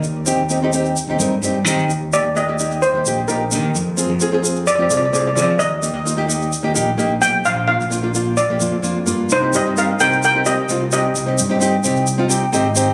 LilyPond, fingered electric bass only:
\new Staff \with { instrumentName = "Fingered electric bass" } { \clef bass \time 4/4 \key c \minor \tempo 4 = 130 ees,8. ees,4. ees,16 g,8 g,8 ees8 | ees,8. ees,4. ees,16 bes,,8 bes,,8 ees8 | f,8. f,4. f,16 c,8 c,8 f8 | ees,8. ees,4. ees,16 bes,,8 bes,,8 ces,8 |
bes,,8. bes,,4. bes,,16 f,8 f,8 g,8 | c,8 g,4 c,4. c,4 | c,8 g,4 c,4. aes,,4 | }